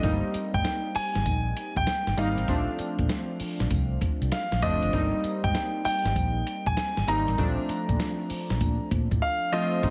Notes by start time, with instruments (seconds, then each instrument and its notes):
Already playing: grand piano D#5
0.03 fingered electric bass G#1, synth keys G3 A#3 C4 D#4, kick, closed hi-hat, tambourine
0.34 muted fingered electric bass stroke, closed hi-hat, tambourine
0.54 fingered electric bass G#2, grand piano G5, kick, closed hi-hat
0.64 snare, closed hi-hat, tambourine
0.95 grand piano G#5, muted fingered electric bass stroke, open hi-hat, tambourine
1.15 fingered electric bass G#1, snare, closed hi-hat
1.26 fingered electric bass A#1, kick, closed hi-hat, tambourine
1.57 closed hi-hat
1.76 fingered electric bass A#1, grand piano G5, kick, closed hi-hat
1.87 snare, closed hi-hat, tambourine
2.07 fingered electric bass G#1, snare
2.17 synth keys G3 A#3 C4 D#4, grand piano F5, closed hi-hat, tambourine
2.37 fingered electric bass A1, closed hi-hat
2.48 fingered electric bass A#1, synth keys F3 A3 C4 D4, kick, closed hi-hat, tambourine
2.79 muted fingered electric bass stroke, closed hi-hat, tambourine
2.99 fingered electric bass A#2, kick, closed hi-hat
3.09 snare, closed hi-hat, tambourine
3.40 muted fingered electric bass stroke, open hi-hat, tambourine
3.60 fingered electric bass A#1, snare, closed hi-hat
3.71 fingered electric bass C2, kick, closed hi-hat, tambourine
4.01 kick, closed hi-hat
4.21 fingered electric bass C2, closed hi-hat
4.32 grand piano F5, snare, closed hi-hat, tambourine
4.52 fingered electric bass A#1, snare
4.62 synth keys F3 A3 C4 D4, grand piano D#5, kick, closed hi-hat, tambourine
4.82 fingered electric bass G1, closed hi-hat
4.93 fingered electric bass G#1, synth keys G3 A#3 C4 D#4, kick, closed hi-hat, tambourine
5.24 muted fingered electric bass stroke, closed hi-hat, tambourine
5.44 fingered electric bass G#2, grand piano G5, kick, closed hi-hat
5.54 snare, closed hi-hat, tambourine
5.85 grand piano G5, muted fingered electric bass stroke, open hi-hat, tambourine
6.05 fingered electric bass G#1, snare, closed hi-hat
6.16 fingered electric bass A#1, kick, closed hi-hat, tambourine
6.47 closed hi-hat
6.66 fingered electric bass A#1, grand piano G#5, kick, closed hi-hat
6.77 snare, closed hi-hat, tambourine
6.97 fingered electric bass G#1, snare
7.07 fingered electric bass G#1, synth keys G3 A#3 C4 D#4, grand piano A#5, closed hi-hat, tambourine
7.28 fingered electric bass A1, closed hi-hat
7.38 synth keys F3 A3 C4 D4, kick, closed hi-hat, tambourine
7.69 muted fingered electric bass stroke, closed hi-hat, tambourine
7.89 fingered electric bass A#2, kick, closed hi-hat
8.00 snare, closed hi-hat, tambourine
8.30 muted fingered electric bass stroke, open hi-hat, tambourine
8.50 fingered electric bass A#1, snare, closed hi-hat
8.61 fingered electric bass A#2, kick, closed hi-hat, tambourine
8.91 fingered electric bass A#2, kick, closed hi-hat
9.11 fingered electric bass A2, kick, closed hi-hat
9.22 grand piano F5
9.52 synth keys F3 A3 C4 F4, grand piano D#5
9.83 fingered electric bass G#1, synth keys G3 A#3 C4 D#4, kick, closed hi-hat, tambourine